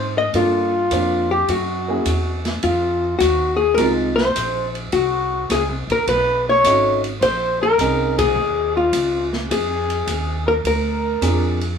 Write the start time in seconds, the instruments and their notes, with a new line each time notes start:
Already playing: upright bass G#2, trumpet C5, hollow-body jazz guitar C5
0.18 hollow-body jazz guitar D#5, trumpet D#5
0.33 upright bass G2, grand piano A#3 D4 F4 A4, hollow-body jazz guitar F4, trumpet F4, kick, ride
0.91 upright bass F2, grand piano A#3 D4 F4 C5, kick, hi-hat pedal, ride
1.31 hollow-body jazz guitar G4, trumpet G4
1.48 upright bass F#2, hollow-body jazz guitar F#4, trumpet F#4, kick, ride
1.88 grand piano A#3 C#4 E4 G#4
2.05 upright bass E2, kick, hi-hat pedal, ride
2.45 snare, ride
2.63 upright bass F2, hollow-body jazz guitar F4, trumpet F4, kick, ride
3.19 upright bass D#2, hollow-body jazz guitar F#4, trumpet F#4, kick, hi-hat pedal, ride
3.57 hollow-body jazz guitar G#4, trumpet G#4
3.74 upright bass C2, grand piano G#3, hollow-body jazz guitar A#4, trumpet A#4, kick, ride
3.79 grand piano C4 D#4 F4
4.16 hollow-body jazz guitar C5, trumpet C5, snare
4.35 upright bass A#1, kick, hi-hat pedal, ride
4.75 ride
4.92 upright bass C2, hollow-body jazz guitar F#4, trumpet F#4, kick, ride
5.50 upright bass C#2, hollow-body jazz guitar G#4, trumpet G#4, kick, snare, hi-hat pedal, ride
5.69 upright bass C2
5.87 upright bass A#1, kick, ride
5.92 trumpet A#4, hollow-body jazz guitar A#4
6.07 upright bass B1, trumpet B4, hollow-body jazz guitar B4, kick, ride
6.49 hollow-body jazz guitar C#5, trumpet C#5
6.64 upright bass G#1, grand piano A3 C#4 D#4 F#4, kick, hi-hat pedal, ride
7.04 ride
7.21 upright bass A#1, trumpet C5, hollow-body jazz guitar C5, kick, ride
7.62 trumpet A#4, hollow-body jazz guitar A#4
7.78 upright bass C2, grand piano C4 C#4 D#4 G#4, kick, hi-hat pedal, ride
8.18 trumpet G#4, hollow-body jazz guitar G#4, kick, ride
8.35 upright bass D#2
8.76 trumpet F4, hollow-body jazz guitar F4
8.93 upright bass C#2, kick, hi-hat pedal, ride
9.33 snare
9.50 upright bass F2, trumpet G#4, hollow-body jazz guitar G#4, kick, ride
9.90 ride
10.07 upright bass D#2, kick, hi-hat pedal, ride
10.46 trumpet A#4, hollow-body jazz guitar A#4
10.64 upright bass D2, trumpet A#4, hollow-body jazz guitar A#4, kick, ride
11.21 upright bass F2, grand piano C4 D4 F4 G#4, kick, hi-hat pedal, ride
11.61 ride